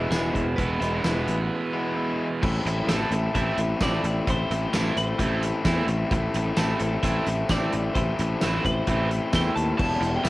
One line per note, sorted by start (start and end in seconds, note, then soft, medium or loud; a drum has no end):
0.00 0.56 E2 medium
0.00 0.57 B2 medium
0.00 0.11 E3 medium
0.00 0.58 E3 medium
0.00 0.11 G#3 medium
0.00 0.57 G#3 medium
0.00 0.12 B3 medium
0.00 0.57 B3 medium
0.00 0.12 E4 loud
0.00 0.59 E4 medium
0.00 0.13 E5 medium
0.11 0.32 E1 medium
0.11 0.42 E3 medium
0.11 0.42 G#3 medium
0.11 0.43 B3 medium
0.11 0.43 E4 medium
0.11 0.35 G#4 medium
0.11 snare loud
0.11 closed hi-hat medium
0.11 tambourine loud
0.34 0.56 E1 medium
0.34 0.56 C5 medium
0.34 kick medium
0.34 closed hi-hat medium
0.56 0.79 E1 medium
0.56 2.41 E2 medium
0.56 2.42 B2 medium
0.56 2.42 E3 medium
0.56 2.42 G#3 loud
0.56 2.42 E4 medium
0.56 1.92 B4 medium
0.56 kick loud
0.56 closed hi-hat medium
0.60 2.42 B3 loud
0.80 1.02 E1 medium
0.80 1.02 E3 medium
0.80 1.02 G#3 medium
0.80 1.03 B3 medium
0.80 1.03 E4 medium
0.80 closed hi-hat medium
1.03 1.25 E1 medium
1.03 1.34 E3 medium
1.03 1.34 G#3 medium
1.03 1.34 B3 medium
1.03 1.34 E4 medium
1.03 snare loud
1.03 closed hi-hat medium
1.03 tambourine loud
1.27 1.48 A1 medium
1.27 closed hi-hat medium
1.74 1.95 E3 medium
1.74 1.95 G#3 medium
1.74 1.95 B3 medium
1.74 1.96 E4 medium
1.96 2.26 E3 medium
1.96 2.26 G#3 medium
1.96 2.26 B3 medium
1.96 2.27 E4 medium
2.42 2.58 A1 medium
2.42 3.80 A2 medium
2.42 2.88 E3 medium
2.42 2.88 A3 medium
2.42 2.89 C4 medium
2.42 2.89 E4 medium
2.42 muted overdriven electric guitar stroke soft
2.42 kick loud
2.42 crash loud
2.65 2.81 A1 loud
2.65 muted overdriven electric guitar stroke medium
2.65 closed hi-hat medium
2.87 3.03 A1 medium
2.87 3.34 E3 medium
2.87 3.12 E3 medium
2.87 3.14 A3 medium
2.87 3.12 A3 medium
2.87 3.12 C4 medium
2.87 3.13 C4 medium
2.87 3.11 E4 medium
2.87 3.12 E4 medium
2.87 3.10 A4 medium
2.87 snare loud
2.87 closed hi-hat loud
2.87 tambourine loud
3.11 3.27 A1 loud
3.11 3.34 A3 medium
3.11 3.35 C4 medium
3.11 3.36 E4 medium
3.11 3.36 A4 medium
3.11 muted overdriven electric guitar stroke medium
3.11 closed hi-hat medium
3.34 3.50 A1 medium
3.34 3.81 E3 medium
3.34 3.58 E3 medium
3.34 3.81 A3 medium
3.34 3.58 A3 medium
3.34 3.82 C4 medium
3.34 3.59 C4 medium
3.34 3.82 E4 medium
3.34 3.58 E4 loud
3.34 3.82 E5 loud
3.34 kick medium
3.34 closed hi-hat loud
3.57 3.73 A1 medium
3.57 muted overdriven electric guitar stroke soft
3.57 closed hi-hat medium
3.81 3.96 A1 medium
3.81 4.27 A2 loud
3.81 4.28 E3 medium
3.81 4.04 E3 medium
3.81 4.04 A3 medium
3.81 4.06 A3 loud
3.81 4.04 C4 medium
3.81 4.06 C4 loud
3.81 4.04 E4 medium
3.81 4.04 E4 loud
3.81 4.29 D5 medium
3.81 kick medium
3.81 snare loud
3.81 closed hi-hat medium
3.81 tambourine loud
4.04 4.19 A1 medium
4.04 4.28 A3 medium
4.04 4.29 C4 medium
4.04 4.29 E4 medium
4.04 muted overdriven electric guitar stroke soft
4.04 closed hi-hat medium
4.27 4.42 A1 medium
4.27 5.64 A2 medium
4.27 4.73 E3 loud
4.27 4.74 A3 medium
4.27 4.74 C4 medium
4.27 4.75 E4 loud
4.27 4.96 C5 loud
4.27 muted overdriven electric guitar stroke soft
4.27 kick loud
4.27 closed hi-hat medium
4.50 4.66 A1 loud
4.50 muted overdriven electric guitar stroke medium
4.50 closed hi-hat medium
4.73 4.89 A1 medium
4.73 4.96 E3 medium
4.73 5.19 E3 medium
4.73 4.99 A3 medium
4.73 4.96 A3 medium
4.73 4.98 C4 medium
4.73 4.96 C4 medium
4.73 4.96 E4 medium
4.73 4.97 E4 medium
4.73 snare loud
4.73 closed hi-hat medium
4.73 tambourine loud
4.96 5.12 A1 medium
4.96 5.21 A3 medium
4.96 5.21 C4 medium
4.96 5.22 E4 medium
4.96 5.85 C5 medium
4.96 muted overdriven electric guitar stroke medium
4.96 closed hi-hat medium
5.19 5.50 A1 medium
5.19 5.42 E3 medium
5.19 5.65 E3 medium
5.19 5.42 A3 loud
5.19 5.65 A3 medium
5.19 5.43 C4 medium
5.19 5.66 C4 medium
5.19 5.43 E4 medium
5.19 5.66 E4 medium
5.19 kick medium
5.19 closed hi-hat loud
5.43 muted overdriven electric guitar stroke medium
5.43 closed hi-hat medium
5.65 5.80 E2 medium
5.65 6.09 A2 loud
5.65 6.09 E3 medium
5.65 5.88 E3 medium
5.65 5.88 A3 medium
5.65 5.89 A3 medium
5.65 5.88 C4 medium
5.65 5.88 C4 loud
5.65 5.87 E4 medium
5.65 5.87 E4 loud
5.65 kick loud
5.65 snare loud
5.65 closed hi-hat loud
5.65 tambourine loud
5.87 6.03 A1 medium
5.87 6.10 A3 medium
5.87 6.11 C4 medium
5.87 6.11 E4 medium
5.87 muted overdriven electric guitar stroke medium
5.87 closed hi-hat medium
6.10 6.27 A1 medium
6.10 7.48 A2 medium
6.10 6.57 E3 medium
6.10 6.57 A3 loud
6.10 6.58 C4 medium
6.10 6.59 E4 loud
6.10 muted overdriven electric guitar stroke soft
6.10 kick loud
6.10 closed hi-hat loud
6.34 6.50 A1 loud
6.34 muted overdriven electric guitar stroke medium
6.34 closed hi-hat medium
6.57 6.73 A1 loud
6.57 7.02 E3 medium
6.57 6.81 E3 medium
6.57 6.81 A3 medium
6.57 6.81 C4 medium
6.57 6.80 C4 medium
6.57 6.80 E4 medium
6.57 6.80 E4 loud
6.57 6.78 A4 medium
6.57 snare loud
6.57 closed hi-hat loud
6.57 tambourine loud
6.79 6.96 A1 loud
6.79 7.02 A3 medium
6.79 7.03 C4 medium
6.79 7.04 E4 medium
6.79 7.03 A4 medium
6.79 muted overdriven electric guitar stroke medium
6.79 closed hi-hat medium
7.02 7.19 A1 loud
7.02 7.49 E3 medium
7.02 7.26 E3 loud
7.02 7.49 A3 medium
7.02 7.26 A3 medium
7.02 7.26 C4 loud
7.02 7.50 C4 medium
7.02 7.51 E4 medium
7.02 7.27 E4 loud
7.02 7.46 E5 loud
7.02 kick medium
7.02 closed hi-hat loud
7.26 7.42 A1 loud
7.26 muted overdriven electric guitar stroke soft
7.26 closed hi-hat medium
7.49 7.65 A1 loud
7.49 7.92 A2 medium
7.49 7.94 E3 medium
7.49 7.73 E3 medium
7.49 7.72 A3 medium
7.49 7.73 A3 medium
7.49 7.73 C4 medium
7.49 7.72 C4 loud
7.49 7.71 E4 loud
7.49 7.72 E4 medium
7.49 7.94 D5 medium
7.49 kick medium
7.49 snare loud
7.49 closed hi-hat medium
7.49 tambourine loud
7.71 7.88 A1 medium
7.71 7.94 A3 medium
7.71 7.94 C4 medium
7.71 7.95 E4 medium
7.71 muted overdriven electric guitar stroke soft
7.71 closed hi-hat medium
7.93 8.10 A1 medium
7.93 8.63 A2 medium
7.93 8.41 E3 medium
7.93 8.40 A3 medium
7.93 8.41 C4 medium
7.93 8.42 E4 medium
7.93 8.64 C5 medium
7.93 muted overdriven electric guitar stroke soft
7.93 kick loud
7.93 closed hi-hat loud
8.18 8.34 A1 loud
8.18 muted overdriven electric guitar stroke medium
8.18 closed hi-hat medium
8.41 8.58 A1 loud
8.41 8.86 E3 medium
8.41 8.65 E3 loud
8.41 8.66 A3 medium
8.41 8.65 A3 medium
8.41 8.64 C4 medium
8.41 8.65 C4 medium
8.41 8.63 E4 medium
8.41 8.64 E4 loud
8.41 snare loud
8.41 closed hi-hat loud
8.41 tambourine loud
8.64 8.80 A1 medium
8.64 8.86 A3 medium
8.64 8.87 C4 medium
8.64 8.88 E4 medium
8.64 9.35 C5 medium
8.64 muted overdriven electric guitar stroke medium
8.64 kick medium
8.64 closed hi-hat medium
8.87 9.18 A1 loud
8.87 9.33 E3 medium
8.87 9.10 E3 medium
8.87 9.32 A3 medium
8.87 9.10 A3 medium
8.87 9.33 C4 medium
8.87 9.10 C4 loud
8.87 9.34 E4 medium
8.87 9.10 E4 medium
8.87 kick medium
8.87 closed hi-hat loud
9.11 muted overdriven electric guitar stroke medium
9.11 closed hi-hat medium
9.32 9.49 E2 loud
9.32 9.77 A2 medium
9.32 9.79 E3 medium
9.32 9.55 E3 medium
9.32 9.57 A3 loud
9.32 9.55 A3 medium
9.32 9.54 C4 medium
9.32 9.56 C4 medium
9.32 9.55 E4 loud
9.32 9.55 G5 loud
9.32 kick medium
9.32 snare loud
9.32 closed hi-hat loud
9.32 tambourine loud
9.56 9.72 D#2 medium
9.56 9.79 A3 medium
9.56 9.78 C4 medium
9.56 9.80 E4 medium
9.56 9.77 A5 loud
9.56 muted overdriven electric guitar stroke soft
9.56 closed hi-hat medium
9.77 9.95 E1 medium
9.77 10.29 E2 medium
9.77 10.29 B2 medium
9.77 10.24 E3 medium
9.77 10.25 G3 medium
9.77 10.25 B3 medium
9.77 10.26 E4 medium
9.77 10.14 A5 loud
9.77 muted overdriven electric guitar stroke medium
9.77 kick loud
9.77 crash loud
10.01 10.17 E1 loud
10.01 muted overdriven electric guitar stroke medium
10.01 closed hi-hat medium
10.16 10.29 G5 loud
10.24 10.29 E1 loud
10.24 10.29 E3 medium
10.24 10.29 G3 medium
10.24 10.29 B3 medium
10.24 10.29 E4 medium
10.24 snare loud
10.24 closed hi-hat loud
10.24 tambourine loud